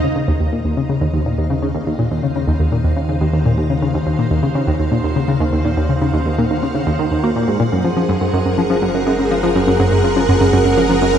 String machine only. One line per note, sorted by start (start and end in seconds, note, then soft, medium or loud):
0.00 9.44 D#4 medium
0.00 9.13 D#5 medium
0.00 7.72 F5 medium
0.00 0.55 G#5 medium
0.00 9.34 A#5 medium
1.01 11.18 F#5 medium
7.73 11.18 G#4 medium
7.97 11.18 A#4 medium